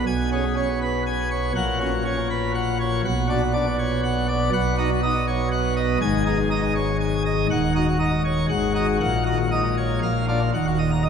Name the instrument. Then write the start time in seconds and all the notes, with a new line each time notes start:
pipe organ
0.07 B1 B2 G#5
0.32 C#4 G#4
0.57 C#4 C#5
0.82 B4
1.06 G#5
1.31 C#5
1.56 A#1 A#2 F#5
1.80 C#4 F#4
2.05 C#4 C#5
2.30 B4
2.55 F#5
2.80 C#5
3.05 B1 B2 F#5
3.29 D4 F#4
3.53 D4 D5
3.79 C#5
4.04 F#5
4.28 D5
4.53 B1 B2 F#5
4.78 D#4 F#4
5.03 D#4 D#5
5.27 C#5
5.52 F#5
5.76 D#5
6.01 G#1 G#2 G#5
6.26 D#4 G#4
6.51 D#4 D#5
6.75 C#5
7.00 G#5
7.25 D#5
7.50 D#1 D#2 F#5
7.75 D#4 F#4
8.00 D#4 D#5
8.25 C#5
8.49 G#1 G#2 F#5
8.75 D#4 F#4
9.00 A#1 A#2 F#5
9.26 D#4 F#4
9.51 D#4 D#5
9.77 C#5
10.03 A#1 A#2 F5
10.28 D4 F4
10.54 D#1 D#2 F#5
10.66 F#4
10.79 D#5
10.91 A#5
11.03 D#4 D#5